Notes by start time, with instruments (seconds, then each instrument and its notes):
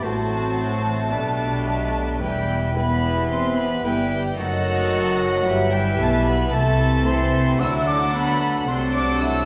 0.02 double bass section A1, cello section A2, bassoon F#3, french horn section A3, viola section C4 F#4, violin section F#4 C5 A5, clarinet F#4, oboe C5, flute A5
1.12 double bass section B1, cello section B2, bassoon G3, viola section B3 D4, clarinet D4, violin section G4 D5, oboe B4
1.67 bassoon F#3
2.20 double bass section E1, cello section E2, bassoon E3, french horn section G3, viola section B3 E4, clarinet E4, violin section G4 B4 G5, oboe B4, flute G5
2.75 bassoon E3, french horn section B3, viola section B3 E4, clarinet E4, violin section G4 B4 B5, oboe B4, flute B5
3.30 french horn section C4, violin section C6, flute C6
3.57 french horn section B3, flute B5, violin section B5
3.84 double bass section G1, cello section G2, bassoon E3, french horn section G3, viola section B3 E4, clarinet E4, violin section G4 B4 G5, oboe B4, flute G5
4.37 double bass section F#1, cello section F#2, bassoon D#3, french horn section F#3, viola section A3 D#4, clarinet F#4, oboe A4, violin section A4 D#5 F#5, flute F#5
5.45 double bass section G1, cello section G2, bassoon E3, viola section G3 G4, clarinet E4, oboe B4, violin section B4 E5
5.71 french horn section G3, violin section G5, flute G5
5.97 double bass section B1, cello section B2, french horn section A3, violin section A5, flute A5
6.25 french horn section B3, violin section B5, flute B5
6.51 double bass section C2, cello section C3, bassoon E3, french horn section A3, viola section A3 E4, clarinet E4, oboe A4, violin section A4 E5 A5, flute A5
7.05 bassoon E3, viola section A3 E4, french horn section C4, clarinet E4, oboe A4, violin section A4 E5 C6, flute C6
7.59 double bass section D2, cello section D3, bassoon F#3, viola section A3 D4, clarinet D4, french horn section E4, oboe A4, violin section A4 F#5 E6, flute E6
7.87 french horn section D4, flute D6, violin section D6
8.12 french horn section B3, flute B5, violin section B5
8.67 double bass section C2, cello section C3, bassoon F#3, viola section A3 D4, french horn section C4, clarinet D4, oboe A4, violin section A4 F#5 C6, flute C6
8.93 french horn section D4, violin section D6, flute D6
9.20 french horn section E4, flute E6, violin section E6